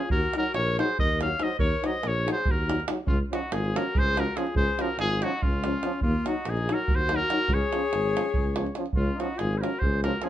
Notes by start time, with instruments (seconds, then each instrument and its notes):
Already playing: alto saxophone F4, trumpet G#4
0.01 davul high
0.10 tuba D#2, alto saxophone F#4, trumpet A#4, davul low
0.33 euphonium D#4, alto saxophone F#4, davul high
0.38 trombone F#3, trumpet A#4
0.54 tuba A#1, trumpet C#5, davul high
0.58 alto saxophone A#4
0.68 davul high
0.78 trombone F#3, euphonium D#4, trumpet C5, davul high
0.84 alto saxophone G#4
0.99 tuba D#2, alto saxophone A#4, trumpet D#5, davul low
1.09 davul high
1.20 trombone F#3, euphonium D#4, alto saxophone C#5, trumpet F5, davul high
1.39 trombone F#3, euphonium D#4, alto saxophone C5, trumpet D#5, davul high
1.59 tuba D#2, alto saxophone A#4, trumpet C#5, davul low
1.82 trombone F#3, euphonium D#4, alto saxophone C5, davul high
1.86 trumpet D#5
1.94 davul high
2.03 tuba A#1, alto saxophone A#4, davul high
2.07 trumpet C#5
2.25 trombone F#3, euphonium D#4, alto saxophone G#4, davul high
2.32 trumpet C5
2.37 davul high
2.45 tuba D#2, alto saxophone F#4, davul low
2.51 trumpet A#4
2.68 trombone F#3, euphonium D#4, davul high
2.80 davul high
2.88 trombone F#3, euphonium D#4, davul high
3.06 tuba C#2, alto saxophone C#4, trumpet F4, davul low
3.31 trombone F3, euphonium C#4, alto saxophone D#4, trumpet F#4, davul high
3.52 tuba G#1, alto saxophone F4, trumpet G#4, davul high
3.65 davul high
3.75 trombone F3, euphonium C#4, alto saxophone F#4, trumpet A#4, davul high
3.94 tuba C#2, alto saxophone G#4, davul low
3.98 trumpet C5
4.08 davul high
4.16 trombone F3, euphonium C#4, alto saxophone F#4, trumpet A#4, davul high
4.36 trombone F3, euphonium C#4, alto saxophone F4, trumpet G#4, davul high
4.47 davul high
4.55 tuba C#2, alto saxophone G#4, trumpet C5, davul low
4.79 trombone F3, euphonium C#4, alto saxophone F#4, trumpet A#4, davul high
4.99 tuba G#1, alto saxophone F4, trumpet G#4, davul high
5.11 davul high
5.22 trombone F3, euphonium C#4, alto saxophone D#4, trumpet F#4, davul high
5.42 tuba C#2, alto saxophone C#4, trumpet F4, davul low
5.53 davul high
5.64 trombone F3, euphonium C#4, davul high
5.83 trombone F3, euphonium C#4, davul high
5.93 davul high
6.01 tuba D#2, alto saxophone A#3, trumpet F4, davul low
6.26 trombone F#3, euphonium D#4, alto saxophone D#4, trumpet F#4, davul high
6.45 tuba A#1, alto saxophone D#4, trumpet G#4, davul high
6.57 davul high
6.69 trombone F#3, euphonium D#4, alto saxophone F#4, davul high
6.74 trumpet A#4
6.88 tuba D#2, davul low
6.95 alto saxophone F#4, trumpet C5
7.01 davul high
7.09 trombone F#3, euphonium D#4, davul high
7.15 alto saxophone F#4, trumpet A#4
7.30 trombone F#3, euphonium D#4, davul high
7.38 davul high
7.48 tuba C#2, davul low
7.54 alto saxophone G#4, trumpet C#5
7.61 davul high
7.73 trombone F3, euphonium C#4, davul high
7.93 tuba G#1, davul high
8.17 trombone F3, euphonium C#4, davul high
8.34 tuba C#2, davul low
8.56 trombone F3, euphonium C#4, davul high
8.66 davul high
8.75 trombone F3, euphonium C#4, davul high
8.86 davul high
8.93 tuba C#2, alto saxophone C#4, trumpet F4, davul low
9.16 trombone F3, alto saxophone D#4, davul high
9.21 euphonium C#4, trumpet F#4
9.35 alto saxophone F4, trumpet G#4, davul high
9.40 tuba G#1
9.53 alto saxophone G#4, davul high
9.58 trombone F3, alto saxophone F#4, trumpet A#4 C5
9.62 euphonium C#4, davul high
9.79 tuba C#2, trumpet C5, davul low
9.83 alto saxophone G#4
9.94 davul high
10.04 trombone F3, euphonium C#4, alto saxophone F#4, trumpet A#4, davul high
10.20 trombone F3, euphonium C#4, alto saxophone F4, trumpet G#4, davul high